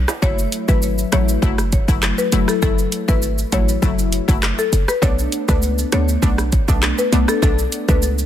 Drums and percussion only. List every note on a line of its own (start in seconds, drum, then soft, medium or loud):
0.08 cross-stick medium
0.08 high timbale medium
0.08 shaker medium
0.08 maracas medium
0.23 kick loud
0.23 shaker medium
0.23 maracas medium
0.38 maracas soft
0.38 shaker medium
0.52 closed hi-hat medium
0.52 shaker medium
0.69 kick loud
0.69 maracas medium
0.69 shaker medium
0.82 shaker medium
0.82 maracas medium
0.98 shaker medium
0.98 maracas medium
1.12 cross-stick loud
1.12 closed hi-hat medium
1.12 shaker medium
1.12 maracas soft
1.29 shaker medium
1.29 maracas medium
1.43 kick medium
1.43 shaker medium
1.43 maracas medium
1.58 cross-stick medium
1.58 maracas medium
1.58 shaker medium
1.72 kick medium
1.72 closed hi-hat medium
1.72 shaker medium
1.88 kick medium
1.88 maracas medium
1.88 shaker medium
2.02 cross-stick loud
2.02 clap loud
2.02 shaker medium
2.02 maracas medium
2.18 shaker medium
2.18 maracas medium
2.32 closed hi-hat medium
2.32 shaker medium
2.32 maracas medium
2.48 cross-stick medium
2.48 shaker medium
2.48 maracas medium
2.62 kick loud
2.62 shaker medium
2.62 maracas medium
2.78 maracas soft
2.78 shaker medium
2.92 closed hi-hat medium
2.92 shaker medium
3.09 kick loud
3.09 maracas medium
3.09 shaker medium
3.22 shaker medium
3.22 maracas medium
3.38 shaker medium
3.38 maracas medium
3.52 kick medium
3.52 closed hi-hat medium
3.52 shaker medium
3.52 maracas soft
3.69 maracas medium
3.69 shaker medium
3.83 kick medium
3.83 shaker medium
3.83 maracas medium
3.99 maracas medium
3.99 shaker medium
4.12 closed hi-hat medium
4.12 shaker medium
4.29 kick medium
4.29 maracas medium
4.29 shaker medium
4.42 cross-stick loud
4.42 clap loud
4.42 high timbale medium
4.42 shaker medium
4.42 maracas medium
4.59 shaker medium
4.59 maracas medium
4.73 closed hi-hat medium
4.73 shaker medium
4.73 maracas soft
4.88 cross-stick medium
4.88 shaker medium
4.88 maracas medium
5.03 kick loud
5.03 shaker medium
5.03 maracas medium
5.19 shaker medium
5.19 maracas soft
5.32 closed hi-hat medium
5.32 shaker medium
5.49 kick loud
5.49 maracas medium
5.49 shaker medium
5.62 shaker medium
5.62 maracas medium
5.78 shaker medium
5.78 maracas medium
5.92 cross-stick loud
5.92 closed hi-hat medium
5.92 shaker medium
5.92 maracas soft
6.08 shaker medium
6.08 maracas medium
6.23 kick medium
6.23 shaker medium
6.23 maracas medium
6.38 cross-stick medium
6.38 maracas medium
6.38 shaker medium
6.52 kick medium
6.52 closed hi-hat medium
6.52 shaker medium
6.68 kick medium
6.68 maracas medium
6.68 shaker medium
6.82 cross-stick loud
6.82 clap loud
6.82 shaker medium
6.82 maracas medium
6.98 shaker medium
6.98 maracas medium
7.13 closed hi-hat medium
7.13 shaker medium
7.13 maracas soft
7.28 cross-stick medium
7.28 shaker medium
7.28 maracas medium
7.43 kick loud
7.43 shaker medium
7.43 maracas medium
7.59 maracas soft
7.59 shaker medium
7.72 closed hi-hat medium
7.72 shaker medium
7.89 kick loud
7.89 maracas medium
7.89 shaker medium
8.02 shaker medium
8.02 maracas medium
8.18 shaker medium
8.18 maracas medium